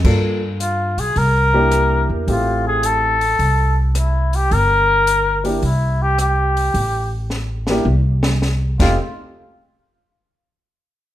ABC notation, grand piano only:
X:1
M:4/4
L:1/8
Q:"Swing" 1/4=108
K:Gdor
V:1 name="Grand piano"
[B,DFA] z4 [B,DEG]3 | [A,CEG]3 z4 z | z3 [B,DEG] z4 | z3 [B,DEG] z3 [A,C_EG] |
z8 |]